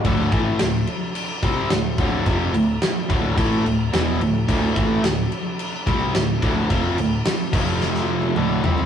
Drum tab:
CC |x-x-x-x-x-x-x-x-|x-x-x-x-x-x-x-x-|x-x-x-x-x-x-x-x-|x-x-x-x---------|
SD |----o-------o---|----o-------o---|----o-------o---|----o---oo------|
T1 |----------------|----------------|----------------|-----------o----|
T2 |----------------|----------------|----------------|------------o---|
FT |----------------|----------------|----------------|--------------oo|
BD |o-o-------o---o-|o-----o-o-------|o-o-------o---o-|o-----o---------|